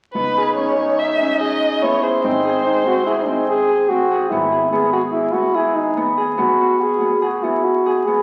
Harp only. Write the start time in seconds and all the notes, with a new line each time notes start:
0.15 B3
0.38 G#4
0.57 C#4
0.78 G#4
1.20 C#4
1.40 G#4
1.83 B3
2.03 G#4
2.24 C4
2.45 G#4
2.86 C4
3.07 G#4
3.27 C4
3.68 G#4
3.90 C4
4.11 G#4
4.32 B3
4.52 G#4
4.73 B3
4.93 G#4
5.34 B3
5.55 G#4
5.97 B3
6.17 G#4
6.38 B3
6.60 F#4
7.01 B3
7.22 G#4
7.43 B3
7.86 G#4
8.07 B3